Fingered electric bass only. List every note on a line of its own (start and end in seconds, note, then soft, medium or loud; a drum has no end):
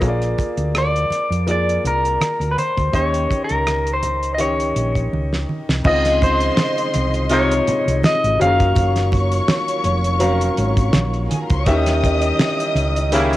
0.02 0.34 A#1 medium
0.57 1.04 D2 medium
1.10 muted fingered electric bass stroke soft
1.30 1.77 F2 medium
1.84 2.16 C2 medium
2.22 muted fingered electric bass stroke soft
2.40 2.55 D2 medium
2.77 2.92 D2 medium
2.93 3.25 D#2 medium
3.51 4.72 C#2 medium
4.76 5.08 A#1 medium
5.13 5.44 C#2 medium
5.69 5.83 C2 medium
5.85 6.49 C#2 loud
6.95 7.58 C2 medium
7.69 muted fingered electric bass stroke soft
7.88 8.02 C2 medium
8.24 8.38 G#1 medium
8.41 8.72 F#1 medium
8.76 9.40 F#1 loud
9.85 10.48 F1 medium
10.58 10.90 G#1 medium
10.94 11.26 A#1 loud
11.50 11.67 C#2 medium
11.67 12.31 D#2 loud
12.75 13.37 C#2 medium